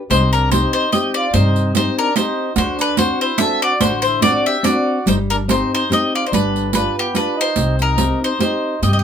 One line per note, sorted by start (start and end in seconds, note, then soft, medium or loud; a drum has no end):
0.10 0.64 C2 medium
0.10 0.50 C3 medium
0.10 0.32 D#4 medium
0.10 0.32 C5 medium
0.10 riq medium
0.33 0.51 D4 medium
0.33 0.51 A#4 medium
0.33 riq soft
0.52 0.85 C4 soft
0.52 0.72 D#4 medium
0.52 0.85 D#4 soft
0.52 0.85 G4 medium
0.52 0.72 C5 medium
0.52 riq medium
0.73 0.91 D#4 medium
0.73 0.91 C5 medium
0.92 1.26 C4 soft
0.92 1.26 D#4 soft
0.92 1.14 G4 medium
0.92 1.26 G4 soft
0.92 1.14 D#5 medium
0.92 riq soft
1.14 1.34 F4 medium
1.14 1.32 D5 medium
1.33 1.87 G2 medium
1.33 1.74 C3 medium
1.33 1.72 D#4 medium
1.33 1.72 C5 medium
1.33 riq soft
1.56 riq soft
1.73 2.08 C4 soft
1.73 1.95 D#4 medium
1.73 2.09 D#4 soft
1.73 2.08 G4 medium
1.73 1.97 C5 medium
1.73 riq medium
1.98 2.15 D4 medium
1.98 2.15 A#4 medium
2.15 2.49 C4 soft
2.15 2.53 D#4 medium
2.15 2.49 D#4 soft
2.15 2.50 G4 medium
2.15 2.54 C5 medium
2.15 riq medium
2.56 3.10 D2 medium
2.56 2.96 D3 medium
2.56 2.77 F#4 medium
2.56 2.78 C5 medium
2.56 riq medium
2.78 2.96 D4 medium
2.78 2.98 B4 medium
2.78 riq soft
2.97 3.31 C4 medium
2.97 3.31 D4 soft
2.97 3.31 F#4 medium
2.97 3.19 F#4 medium
2.97 3.20 C5 medium
2.97 riq medium
3.21 3.38 E4 medium
3.21 3.40 C5 medium
3.38 3.72 C4 medium
3.38 3.73 D4 soft
3.38 3.73 F#4 medium
3.38 3.61 A4 medium
3.38 3.60 E5 medium
3.38 riq medium
3.62 3.81 F#4 medium
3.62 3.80 D5 medium
3.80 4.35 A1 medium
3.80 4.21 D3 medium
3.80 4.03 F#4 medium
3.80 4.01 C5 medium
3.80 riq medium
4.02 4.22 C5 medium
4.02 riq soft
4.06 4.23 E4 medium
4.21 4.55 C4 soft
4.21 4.56 D4 medium
4.21 4.56 F#4 medium
4.21 4.45 F#4 medium
4.21 4.44 D5 medium
4.21 riq medium
4.46 4.64 G4 medium
4.46 4.64 E5 medium
4.63 4.98 C4 soft
4.63 4.98 D4 soft
4.63 4.99 F#4 soft
4.63 5.08 D5 medium
4.63 riq medium
4.67 5.06 F#4 medium
5.06 5.62 G1 medium
5.06 5.48 G3 medium
5.06 5.19 D#4 medium
5.06 5.14 C5 medium
5.06 riq medium
5.30 5.41 D4 medium
5.30 5.35 A#4 medium
5.30 riq soft
5.48 5.82 C4 soft
5.48 5.83 D#4 soft
5.48 5.72 D#4 medium
5.48 5.83 G4 soft
5.48 5.72 C5 medium
5.48 riq medium
5.73 5.91 D#4 medium
5.73 5.91 C5 medium
5.90 6.24 C4 soft
5.90 6.24 D#4 soft
5.90 6.24 G4 medium
5.90 6.13 G4 medium
5.90 6.14 D#5 medium
5.90 riq soft
6.15 6.26 F4 medium
6.15 6.26 D5 medium
6.26 6.33 D#4 medium
6.26 6.33 C5 medium
6.32 6.86 G1 medium
6.32 6.73 G3 medium
6.32 6.71 D4 medium
6.32 6.72 B4 medium
6.32 riq soft
6.56 riq soft
6.73 6.96 D4 medium
6.73 7.07 F4 medium
6.73 7.07 G4 soft
6.73 7.07 B4 medium
6.73 6.96 B4 medium
6.73 riq medium
6.97 7.14 B3 medium
6.97 7.15 G4 medium
7.14 7.36 D4 medium
7.14 7.48 F4 soft
7.14 7.48 G4 soft
7.14 7.48 B4 medium
7.14 7.39 B4 medium
7.14 riq soft
7.37 7.76 D#4 medium
7.41 7.78 C5 loud
7.56 8.11 C2 medium
7.56 7.97 C3 medium
7.56 riq soft
7.79 8.20 D#4 medium
7.79 8.24 A#4 medium
7.79 riq soft
7.98 8.32 C4 medium
7.98 8.32 D#4 soft
7.98 8.32 G4 medium
7.98 riq medium
8.23 8.40 D#4 medium
8.23 8.39 C5 medium
8.39 8.73 C4 soft
8.39 8.73 D#4 soft
8.39 8.81 D#4 medium
8.39 8.74 G4 medium
8.39 8.80 C5 medium
8.39 riq medium
8.82 9.04 G2 medium
8.82 9.04 C3 medium
8.82 9.04 G4 medium
8.82 8.90 D#5 medium
8.82 riq soft
8.93 8.98 D#5 medium
8.99 9.04 D#5 medium